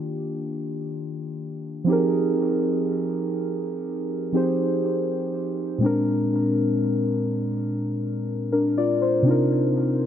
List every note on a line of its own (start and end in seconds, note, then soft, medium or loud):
0.00 1.82 D#3 medium
0.00 1.83 A#3 medium
0.00 1.84 D4 medium
0.00 1.85 F4 medium
0.00 1.86 G4 medium
1.84 4.28 F3 medium
1.84 4.29 C4 medium
1.84 4.30 D#4 medium
1.89 4.31 G4 medium
1.89 4.31 G#4 medium
1.89 4.32 A#4 medium
4.33 5.81 F3 medium
4.33 5.81 C4 medium
4.33 5.82 D#4 soft
4.33 5.82 G4 medium
4.33 5.82 G#4 medium
4.37 5.83 C5 medium
5.78 9.20 A#2 medium
5.78 9.21 G#3 medium
5.78 9.22 C4 medium
5.84 8.25 D4 medium
5.84 8.26 A#4 medium
8.53 8.76 D4 medium
8.53 8.76 A#4 medium
8.78 9.01 F4 medium
8.78 9.01 D5 medium
9.02 9.48 C5 medium
9.23 10.06 C3 medium
9.23 10.06 C4 medium
9.23 10.06 D4 medium
9.27 10.06 D#4 medium
9.27 10.06 F4 medium
9.27 10.06 A#4 medium